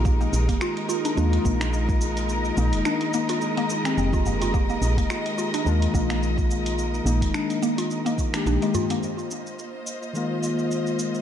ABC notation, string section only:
X:1
M:4/4
L:1/8
Q:"Swing 16ths" 1/4=107
K:Cm
V:1 name="String section"
[A,EBe]8- | [A,EBe]8- | [A,EBe]8- | [A,EBe]8 |
[B,Fce]8 |]